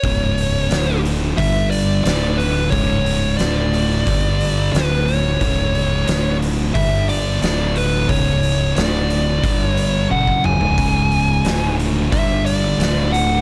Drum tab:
HH |o-o-o-o-o-o-o-o-|o-o-o-o-o-o-o-o-|o-o-o-o-o-o-o-o-|o-o-o-o-o-o-----|
SD |----o-------o---|----o-------o---|----o-------o---|----o-----------|
T1 |----------------|----------------|----------------|------------o---|
T2 |----------------|----------------|----------------|--------------o-|
FT |----------------|----------------|----------------|---------------o|
BD |o-------o-------|o-------o-------|o-------o-------|o-------o----o--|

HH |o-o-o-o-o-o-o-o-|
SD |----o-------o---|
T1 |----------------|
T2 |----------------|
FT |----------------|
BD |o-------o-------|